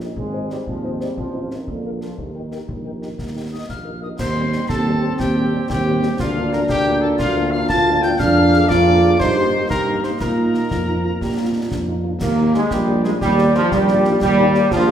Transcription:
Already playing: euphonium C#4
0.00 french horn section G4 A#4, cornet D#5, snare
0.16 tuba G#1, trombone section G#3, euphonium C4, concert bass drum
0.34 french horn section D#4 G#4 C5, cornet D#5
0.50 trombone section G3, french horn section D#4 G#4 C5, cornet D#5, snare
0.67 tuba D#2, trombone section F3, euphonium C4, concert bass drum
0.84 french horn section D#4 G#4 C5, cornet D#5
1.01 trombone section G3, french horn section D#4 G#4 C5, cornet D#5, snare
1.17 tuba A1, trombone section F3, concert bass drum
1.34 french horn section D#4 F4 C5, cornet F5
1.50 trombone section D#3, french horn section D#4 F4 C5, cornet F5, snare
1.68 tuba A#1, trombone section D3, euphonium A#3, concert bass drum
1.85 french horn section F4 G#4 A#4, cornet F5
2.01 trombone section F3, french horn section F4 G#4 A#4, cornet F5, snare
2.18 tuba D#2, trombone section D#3, euphonium G4, concert bass drum
2.35 french horn section D#4 G4 A#4, cornet G5
2.51 french horn section D#4 G4 A#4, cornet G5, snare
2.69 tuba A#1, concert bass drum
2.85 french horn section D#4 G4 A#4, cornet G5
3.01 french horn section D#4 G4 A#4, cornet G5, snare
3.18 tuba D#2, concert bass drum, snare
3.35 french horn section D#4 G4 A#4, cornet G5
3.51 french horn section D#4 G4 A#4, cornet D#5, piccolo D#6
3.69 tuba A#1, cornet F5, piccolo F6, concert bass drum, snare
3.85 french horn section D#4 G4 A#4
4.02 french horn section D#4 G4 A#4, cornet D#5, piccolo D#6
4.19 tuba D#2, trombone section G3 C4, euphonium D#4, cornet C5, piccolo C6, concert bass drum, snare, crash
4.36 french horn section G3 C4 G4
4.53 french horn section G3 C4 G4, snare
4.69 tuba D#2, euphonium C4, cornet A4, piccolo A5, concert bass drum, snare
4.86 french horn section G3 C4 G4
5.03 french horn section G3 C4 G4
5.19 tuba D#2, cornet G4, piccolo G5, concert bass drum, snare
5.37 french horn section G3 C4 G4
5.52 french horn section G3 C4 G4
5.69 tuba D#2, euphonium C4, cornet G4, piccolo G5, concert bass drum, snare
5.86 french horn section G3 C4 G4
6.03 french horn section G3 C4 G4, snare
6.19 tuba D2, trombone section A#3 D4, euphonium D4, cornet F4, piccolo F5, concert bass drum, snare, crash
6.36 french horn section A#3 D4 F4
6.53 french horn section A#3 D4 F4, cornet A#4, piccolo A#5, snare
6.69 tuba D2, cornet G4, piccolo G5, concert bass drum, snare
6.86 french horn section A#3 D4 F4
7.02 french horn section A#3 D4 F4, cornet A4, piccolo A5
7.19 tuba D2, cornet F4, piccolo F5, concert bass drum, snare
7.37 french horn section A#3 D4 F4
7.52 french horn section A#3 D4 F4, cornet F5, piccolo F6
7.69 tuba D2, euphonium F4, cornet A5, piccolo A6, concert bass drum, snare
7.88 french horn section A#3 D4 F4
8.02 french horn section A#3 D4 F4, cornet G5, piccolo G6, snare
8.19 tuba F2, trombone section A#3 D4, euphonium D4, cornet F5, piccolo F6, concert bass drum, snare, crash
8.37 french horn section A#3 D4 G#4
8.53 french horn section A#3 D4 G#4, snare
8.69 tuba F2, euphonium F4, cornet D5, piccolo D6, concert bass drum, snare
8.87 french horn section A#3 D4 G#4
9.04 french horn section A#3 D4 G#4
9.20 tuba G2, euphonium D#4, trombone section D#4, cornet C5, piccolo C6, concert bass drum, snare
9.38 french horn section A#3 D#4 G4
9.54 french horn section A#3 D#4 G4
9.70 tuba G2, euphonium G4, cornet A#4, piccolo A#5, concert bass drum, snare
9.88 french horn section A#3 D#4 G4
10.03 french horn section A#3 D#4 G4, cornet C5, piccolo C6, snare
10.20 tuba A#2, trombone section F3, euphonium F4, cornet A#4, piccolo A#5, concert bass drum, snare, crash
10.37 french horn section A#3 D#4 F4
10.54 french horn section A#3 D#4 F4, snare
10.70 tuba F2, euphonium F4, concert bass drum, snare
10.87 french horn section A#3 D#4 F4, euphonium D#4
11.04 french horn section A#3 D#4 F4, euphonium F4
11.20 tuba A#2, trombone section D4, euphonium G4, concert bass drum, snare
11.37 french horn section A#3 D4 F4, euphonium F4
11.54 french horn section A#3 D4 F4, euphonium D#4
11.71 tuba F2, euphonium D4, concert bass drum, snare
11.87 french horn section A#3 D4 F4, euphonium D#4
12.04 french horn section A#3 D4 F4, euphonium F4
12.20 tuba D#2, trombone section A#3, euphonium A#3, cornet A#4, concert bass drum, snare, crash
12.38 french horn section A#3 D#4 G4
12.54 trombone section G#3, euphonium G#3, french horn section A#3 D#4 G4, cornet G#4, snare
12.71 tuba A#1, trombone section G3, euphonium G3, cornet G4, concert bass drum, snare
12.88 french horn section A#3 D#4 G4
13.04 trombone section G#3, euphonium G#3, french horn section A#3 D#4 G4, cornet G#4, snare
13.21 tuba D#2, trombone section G3, euphonium G3, cornet G4, concert bass drum, snare
13.38 french horn section A#3 D#4 G4, snare
13.54 trombone section F3, euphonium F3, french horn section A#3 D#4 G4, cornet F4, snare
13.72 tuba A#1, euphonium G3, trombone section G3, cornet G4, concert bass drum, snare
13.88 french horn section A#3 D#4 G4, snare
14.05 french horn section A#3 D#4 G4, snare
14.21 tuba D#2, euphonium G3, trombone section G3, cornet G4, concert bass drum, snare, crash
14.38 french horn section A#3 D#4 G4
14.55 french horn section A#3 D#4 G4, snare
14.71 tuba A#1, trombone section F3, euphonium F3, cornet F4, concert bass drum, snare
14.88 french horn section G4

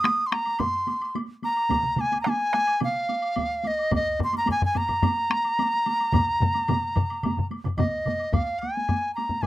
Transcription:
Already playing: dizi D#6
0.04 taiko rim, taiko high, high woodblock
0.18 taiko high
0.27 dizi C6
0.32 dizi A#5, taiko rim, taiko high, high woodblock
0.45 taiko high, high woodblock
0.59 dizi C6, taiko low-mid, taiko high, high woodblock
0.73 taiko high
0.87 taiko high, high woodblock
1.01 taiko high, high woodblock
1.15 taiko high, high woodblock
1.29 taiko high
1.42 dizi A#5, taiko high, high woodblock
1.56 high woodblock
1.70 taiko, taiko mid, taiko high, high woodblock
1.83 taiko mid, taiko high
1.96 taiko mid, taiko high, high woodblock
2.01 dizi G#5
2.12 taiko high, high woodblock
2.21 dizi A#5, taiko rim
2.26 dizi G#5, taiko high, high woodblock
2.40 taiko high
2.53 taiko rim, taiko high, high woodblock
2.67 taiko high, high woodblock
2.80 dizi F5, taiko mid, taiko high, high woodblock
2.96 taiko high
3.09 taiko high, high woodblock
3.22 high woodblock
3.36 taiko, taiko high, high woodblock
3.50 taiko high
3.63 dizi D#5, taiko high, high woodblock
3.79 high woodblock
3.91 taiko, taiko low-mid, taiko high, high woodblock
3.96 dizi D#5
4.19 taiko low-mid, taiko high, high woodblock
4.24 dizi C6
4.33 taiko high, high woodblock
4.38 dizi A#5
4.46 taiko low-mid, taiko high, high woodblock
4.51 dizi G#5
4.61 dizi G#5, taiko low-mid, taiko high
4.75 dizi A#5, taiko low-mid, taiko high, high woodblock
4.88 taiko low-mid, taiko high, high woodblock
5.02 taiko low-mid, taiko high, high woodblock
5.17 taiko high
5.30 taiko rim, taiko high
5.44 taiko high, high woodblock
5.59 taiko high, high woodblock
5.74 taiko high
5.86 taiko high, high woodblock
6.00 taiko high, high woodblock
6.13 taiko, taiko low-mid, taiko mid, taiko high, high woodblock
6.40 taiko low-mid, taiko mid, taiko high
6.54 taiko high, high woodblock
6.68 taiko low-mid, taiko mid, taiko high, high woodblock
6.84 taiko high
6.95 taiko low-mid, taiko mid, high woodblock
7.10 taiko high, high woodblock
7.23 taiko low-mid, taiko mid, taiko high, high woodblock
7.37 taiko low-mid, taiko mid, taiko high
7.51 taiko high, high woodblock
7.65 taiko low-mid, taiko mid, taiko high, high woodblock
7.77 dizi D#5, taiko, taiko low-mid, taiko mid, taiko high, high woodblock
7.93 taiko high
8.05 taiko low-mid, taiko mid, taiko high, high woodblock
8.19 taiko high, high woodblock
8.33 dizi F5, taiko, taiko low-mid, taiko high, high woodblock
8.59 dizi G#5, taiko high, high woodblock
8.77 taiko high
8.88 taiko low-mid, taiko high, high woodblock
9.15 dizi A#5, taiko high, high woodblock
9.29 taiko low-mid, taiko high
9.42 dizi G#5, taiko low-mid, high woodblock

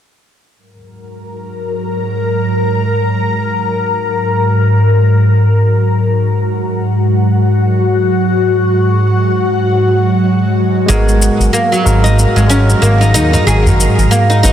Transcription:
0.56 ambient pad G#2 F#3 A#4
5.72 ambient pad F#4
10.86 analog synth bass G#1, tine electric piano G#3 B3 F#4, oud G#3, ambient pad A#4, shaker
10.91 tine electric piano A#4
11.09 shaker
11.22 shaker
11.40 analog synth bass G#1, shaker
11.53 oud A#3, shaker
11.72 oud F#3, shaker
11.84 analog synth bass G#1, tine electric piano G#3 F#4 A#4, shaker
12.04 oud D#4, shaker
12.19 shaker
12.36 analog synth bass G#1, oud G#3, shaker
12.47 tine electric piano G#3 F#4, oud C#4, shaker
12.51 tine electric piano A#4
12.70 shaker
12.82 analog synth bass G#1, oud A#3, shaker
13.01 oud D#4, shaker
13.14 analog synth bass D#2, oud D#4, shaker
13.33 oud D#4, udu, shaker
13.45 analog synth bass G#1, tine electric piano G#3 F#4 A#4, oud G#4, shaker
13.66 udu, shaker
13.80 shaker
13.98 analog synth bass G#1, shaker
14.11 oud A#3, shaker
14.30 oud D#4, shaker
14.43 analog synth bass G#1, tine electric piano G#3 B3 F#4 B4, oud D#4, shaker

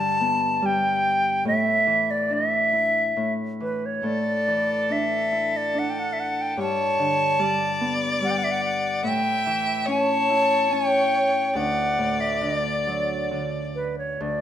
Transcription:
Already playing: harp G2 D3 G3 D4 E4, flute A5
0.21 harp B3
0.62 harp G3, flute G5
1.45 harp A2, flute E5
1.86 harp E3
2.11 flute D5
2.30 harp D4, flute E5
2.73 harp E4
3.17 harp A2
3.60 harp E3, flute B4
3.86 flute C#5
4.03 harp A2, fiddle A4, flute D5
4.47 harp E3
4.90 harp D4, flute E5
5.32 harp E4
5.57 flute D5
5.74 harp D4
5.79 flute F#5
5.90 flute G5
5.99 flute F#5
6.13 flute E5
6.20 flute F#5
6.41 flute G5
6.57 harp G2, fiddle C#5
6.62 flute A5
6.99 harp D3
7.39 harp G3, fiddle D5
7.81 harp B3
8.21 harp G3, flute F#5
8.31 flute G5
8.38 flute F#5
8.44 flute E5
8.51 flute F#5
8.64 flute F#5
9.03 harp A2, fiddle E5
9.08 flute G5
9.46 harp E3
9.86 harp C#4, fiddle C#5
9.91 flute A5
10.30 harp E4
10.71 harp C#4, flute G5
11.54 harp D2, fiddle D5, flute F#5
11.98 harp A2
12.20 flute E5
12.41 harp D3, flute D5
12.87 harp F#3
13.31 harp D3
13.75 flute B4
13.98 flute C#5
14.20 harp D2, flute D5

